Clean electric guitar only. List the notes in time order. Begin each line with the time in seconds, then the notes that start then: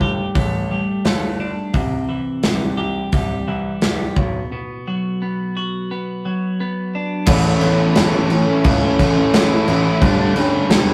Already playing: G3 A3
0.01 G4
0.35 A3
0.71 G3
1.05 A3
1.40 D4
1.75 C3
2.09 E3
2.44 G3
2.77 G4
3.13 G3
3.48 E3
3.83 G3
4.18 B2
4.52 B2
4.88 F#3
5.22 B3
5.57 F#4
5.91 B3
6.25 F#3
6.60 B3
6.95 D4